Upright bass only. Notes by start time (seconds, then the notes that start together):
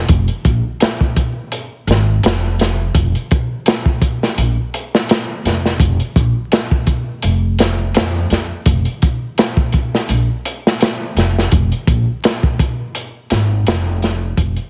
0.09 F1
0.45 A#1
1.87 G#1
2.23 F1
2.95 F1
4.38 A#1
5.45 F1
5.80 F1
6.16 A#1
7.24 F1
7.95 F2
8.31 F2
8.66 F1
10.09 A#1
11.16 F1
11.52 F1
11.87 A#1
13.31 G#1
13.67 F1
14.37 F1